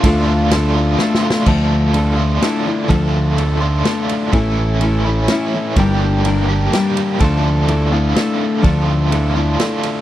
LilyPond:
<<
  \new Staff \with { instrumentName = "Steel-string acoustic guitar" } { \time 3/4 \key d \minor \tempo 4 = 125 <d a d' f' a'>4 <a d' f' a'>4 <a d' f' a'>4 | <d f a d' a'>4 <a d' a'>4 <a d' e' a'>8 <a d' e' a'>8 | <d f a d' a'>4 <a d' a'>4 <a d' a'>4 | <a, e a cis' e' a'>4 <a cis' e' a'>4 <a cis' e' a'>8 <a cis' e' a'>8 |
<g d' g' bes'>4 <g d' g' bes'>4 <g d' g' bes'>4 | <d f a d' a'>4 <a d' e' a'>8 <a d' e' a'>8 <a d' a'>4 | <d f a d' a'>4 <a d' e' a'>8 <a d' e' a'>8 <a d' a'>4 | }
  \new Staff \with { instrumentName = "Overdriven electric guitar" } { \time 3/4 \key d \minor <d a d' f'>8 <a d' f'>8 <d a d' f'>8 <a d' f'>8 <d a d' f'>8 <a d' f'>8 | <d a d' f'>4. <d a d' f'>4. | <d a d' f'>4. <d a d' f'>4. | <a, e a cis' e'>4. <a, e a cis' e'>4. |
<g, d g bes d' g'>4. <g, d g bes d' g'>4. | <d a d' f'>4. <d a d' f'>4. | <d a d' f'>4. <d a d' f'>4. | }
  \new Staff \with { instrumentName = "Fingered electric bass" } { \clef bass \time 3/4 \key d \minor d,2 r4 | d,2 r4 | d,2 r4 | a,,2 r4 |
g,,2 r4 | d,2 r4 | d,2 r4 | }
  \new DrumStaff \with { instrumentName = "Drums" } \drummode { \time 3/4 <bd cymr>4 <cymr sn>4 \tuplet 3/2 { sn8 sn8 sn8 } | <cymc bd>4 cymr4 <cymr sn>4 | <bd cymr>4 cymr4 <cymr sn>8 cymr8 | <bd cymr>4 cymr4 <cymr sn>4 |
<bd cymr>4 cymr4 <cymr sn>8 cymr8 | <bd cymr>4 cymr4 <cymr sn>4 | <bd cymr>4 cymr4 <cymr sn>8 cymr8 | }
>>